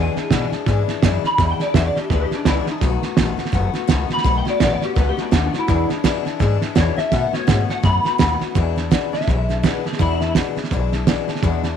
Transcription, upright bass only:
0.00 0.15 E2 medium
0.16 muted upright bass stroke medium
0.31 0.51 B2 loud
0.51 muted upright bass stroke medium
0.66 0.87 G#2 loud
0.88 muted upright bass stroke medium
1.02 1.23 F#2 medium
1.23 muted upright bass stroke medium
1.38 1.59 E2 medium
1.59 muted upright bass stroke medium
1.74 1.95 E2 loud
1.95 muted upright bass stroke medium
2.10 2.30 D2 medium
2.31 muted upright bass stroke medium
2.46 2.66 C#2 loud
2.67 muted upright bass stroke medium
2.81 3.02 B1 medium
3.17 3.38 A1 medium
3.53 3.74 F#1 loud
3.88 4.09 C#2 medium
4.10 muted upright bass stroke medium
4.24 4.45 B1 medium
4.60 4.80 A1 loud
4.81 muted upright bass stroke medium
4.97 5.17 C#2 medium
5.32 5.53 D#2 loud
5.68 5.89 E2 medium
5.90 muted upright bass stroke medium
6.04 6.24 F#2 loud
6.26 muted upright bass stroke soft
6.40 6.61 G#2 loud
6.62 muted upright bass stroke medium
6.76 6.96 E2 loud
6.97 muted upright bass stroke medium
7.12 7.31 B2 medium
7.32 muted upright bass stroke medium
7.48 7.68 G#2 loud
7.69 muted upright bass stroke medium
7.84 8.04 F#2 loud
8.04 muted upright bass stroke medium
8.19 8.40 D#2 loud
8.41 muted upright bass stroke medium
8.55 8.95 E2 loud
9.13 muted upright bass stroke medium
9.28 9.68 B1 medium
9.84 muted upright bass stroke medium
9.99 10.39 E2 medium
10.56 muted upright bass stroke medium
10.71 11.11 B1 medium
11.28 muted upright bass stroke medium
11.42 11.77 E2 medium

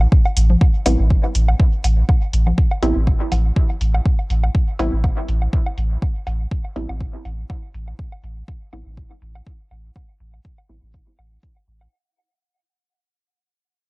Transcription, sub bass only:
0.37 0.56 A1 loud
0.86 0.96 A1 loud
0.99 1.17 A1 medium
1.35 1.54 A1 medium
1.84 2.03 A1 medium
2.33 2.52 A1 medium
2.82 2.92 A1 loud
2.96 3.14 A1 medium
3.32 3.51 A1 medium
3.81 4.00 A1 medium
4.30 4.49 A1 loud
4.79 4.89 A1 loud
4.93 5.10 A1 medium
5.28 5.47 A1 medium
5.78 5.97 A1 medium
6.27 6.46 A1 loud
6.76 6.86 A1 loud
6.89 7.07 A1 loud
7.25 7.44 A1 medium
7.74 7.93 A1 medium
8.24 8.42 A1 medium
8.73 8.83 A1 loud
8.86 9.04 A1 medium
9.22 9.41 A1 medium
9.71 9.90 A1 medium
10.20 10.39 A1 loud
10.69 10.79 A1 loud
10.83 11.01 A1 medium
11.19 11.38 A1 medium
11.68 11.87 A1 medium

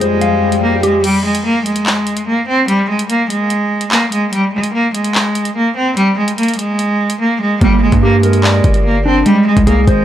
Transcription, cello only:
0.01 0.59 G#3 medium
0.63 0.80 A#3 medium
0.84 1.00 G#3 medium
1.04 1.21 G3 loud
1.24 1.41 G#3 medium
1.45 1.62 A#3 medium
1.65 2.23 G#3 medium
2.27 2.44 A#3 medium
2.48 2.65 C4 medium
2.68 2.85 G3 loud
2.89 3.06 G#3 medium
3.09 3.26 A#3 medium
3.30 3.88 G#3 medium
3.92 4.08 A#3 medium
4.12 4.29 G#3 medium
4.33 4.50 G3 loud
4.53 4.70 G#3 medium
4.74 4.90 A#3 medium
4.94 5.52 G#3 medium
5.56 5.73 A#3 medium
5.77 5.93 C4 medium
5.97 6.14 G3 loud
6.18 6.34 G#3 medium
6.38 6.55 A#3 medium
6.59 7.17 G#3 medium
7.20 7.37 A#3 medium
7.41 7.58 G#3 medium
7.62 7.78 G3 loud
7.82 7.99 G#3 medium
8.03 8.19 A#3 medium
8.23 8.81 G#3 medium
8.85 9.02 A#3 medium
9.05 9.22 C4 medium
9.26 9.43 G3 loud
9.47 9.63 G#3 medium
9.67 9.84 A#3 medium
9.87 10.05 G#3 medium

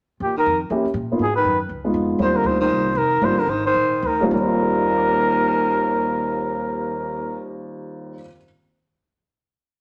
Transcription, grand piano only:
0.71 0.84 A#3 medium
0.71 0.84 C#4 soft
0.71 0.84 E4 medium
0.71 0.85 G4 medium
1.12 1.20 A#3 medium
1.12 1.20 B3 medium
1.12 1.21 D#4 soft
1.12 1.21 F4 medium
1.84 2.18 G#3 medium
1.84 2.18 B3 medium
1.84 2.18 D#4 medium
1.84 2.18 F4 medium
2.19 2.89 G3 medium
2.19 2.89 A#3 medium
2.19 2.89 C4 medium
2.19 2.90 F4 medium
3.22 3.36 G3 medium
3.22 3.36 A#3 medium
3.22 3.36 C4 soft
3.22 3.36 F4 medium
4.21 8.12 D#2 medium
4.21 4.32 G3 medium
4.21 4.32 A#3 medium
4.21 4.32 C4 medium
4.21 4.32 F4 medium
4.28 8.16 D#3 medium
4.34 8.19 G3 medium
4.41 8.22 C4 medium
4.47 8.25 F4 medium
4.63 8.14 A#4 soft
4.70 8.18 D5 soft
4.79 8.23 F5 soft
4.88 8.27 A#5 soft
4.98 8.32 D6 soft
5.08 8.37 F6 soft
5.20 8.43 A#6 soft

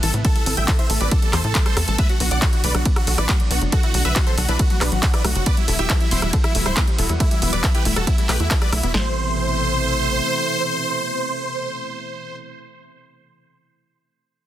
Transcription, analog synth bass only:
0.03 0.12 A1 medium
0.14 0.23 A2 medium
0.46 0.55 A1 medium
0.57 0.66 A1 medium
0.90 0.99 A1 medium
1.01 1.10 A1 medium
1.33 1.42 E2 medium
1.44 1.53 A2 medium
1.77 1.86 E2 medium
1.88 1.97 A1 medium
2.20 2.30 B1 loud
2.31 2.40 B1 medium
2.64 2.73 B1 medium
2.75 2.84 B1 medium
3.07 3.16 B1 medium
3.18 3.27 A1 medium
3.51 3.60 B1 medium
3.62 3.71 F#1 medium
3.94 4.03 B1 loud
4.05 4.14 B1 medium
4.38 4.47 B1 medium
4.49 4.58 B1 medium
4.81 4.90 B1 medium
4.92 5.01 A1 medium
5.25 5.34 B1 medium
5.36 5.45 F#1 medium
5.68 5.77 E1 loud
5.79 5.88 E1 medium
6.12 6.21 E1 medium
6.22 6.32 E1 medium
6.55 6.64 E1 medium
6.66 6.75 D1 medium
6.98 7.08 E1 medium
7.09 7.19 E2 medium
7.42 7.51 E1 loud
7.53 7.62 E1 medium
7.85 7.95 E1 medium
7.96 8.05 E1 medium
8.29 8.38 B1 medium
8.40 8.49 E2 medium
8.72 8.82 B1 loud
8.83 8.92 E1 medium
8.94 10.21 A1 loud

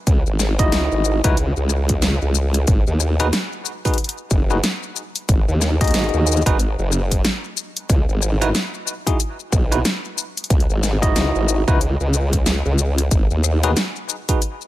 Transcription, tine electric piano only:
0.59 1.20 D#4 medium
0.59 1.20 E4 medium
0.59 1.20 F#4 medium
0.59 1.20 D#5 loud
1.24 1.35 D#4 loud
1.24 1.35 E4 medium
1.24 1.35 F#4 medium
1.24 1.35 B4 loud
3.20 3.27 D#4 loud
3.20 3.27 F#4 medium
3.20 3.27 G#4 medium
3.20 3.27 B4 loud
3.85 3.96 D#4 medium
3.85 3.96 F#4 medium
3.85 3.96 G#4 medium
3.85 3.96 B4 medium
4.50 4.57 D#4 medium
4.50 4.57 F#4 medium
4.50 4.57 G#4 medium
4.50 4.57 B4 medium
5.81 6.41 D#4 medium
5.81 6.41 F#4 medium
5.81 6.41 G#4 medium
5.81 6.41 D#5 loud
6.46 6.57 D#4 loud
6.46 6.57 F#4 medium
6.46 6.57 G#4 medium
6.46 6.57 B4 loud
8.41 8.48 D#4 loud
8.41 8.48 E4 medium
8.41 8.48 F#4 medium
8.41 8.48 B4 loud
9.07 9.17 D#4 medium
9.07 9.17 E4 medium
9.07 9.17 F#4 medium
9.07 9.17 G#4 medium
9.72 9.79 D#4 medium
9.72 9.79 E4 medium
9.72 9.79 F#4 medium
9.72 9.79 B4 loud
11.02 11.63 D#4 medium
11.02 11.63 E4 medium
11.02 11.63 F#4 medium
11.02 11.63 D#5 loud
11.68 11.78 D#4 loud
11.68 11.78 E4 medium
11.68 11.78 F#4 medium
11.68 11.78 B4 loud
13.64 13.70 D#4 loud
13.64 13.70 F#4 medium
13.64 13.70 G#4 medium
13.64 13.70 B4 loud
14.29 14.39 D#4 medium
14.29 14.39 F#4 medium
14.29 14.39 G#4 medium
14.29 14.39 B4 medium

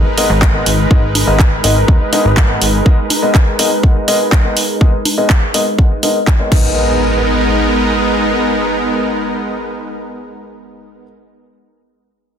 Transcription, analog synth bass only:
0.30 0.63 G#1 loud
0.66 0.86 G#1 medium
0.91 1.24 G#1 loud
1.27 1.60 G#1 medium
1.64 1.84 G#1 medium
1.88 1.98 D#2 medium
2.25 2.58 G#1 loud
2.62 2.81 G#1 medium

